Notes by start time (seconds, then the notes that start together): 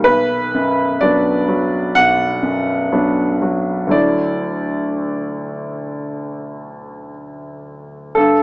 0.04 B1 B4
0.54 F#2
1.01 F#3 B3 D4 D5
1.48 F#3
1.95 B1 F#5
2.43 F#2
2.92 F#3 B3 D4
3.42 F#3
3.87 D2 F#3 A3
3.91 E4 D5
8.15 G2 A4